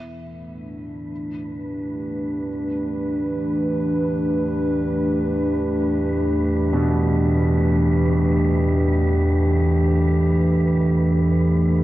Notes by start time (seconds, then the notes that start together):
Already playing: E2 E3 B3 E4 B4 E5
0.18 A3
0.46 D4
1.40 B4
1.56 G4
6.73 B2
9.28 A4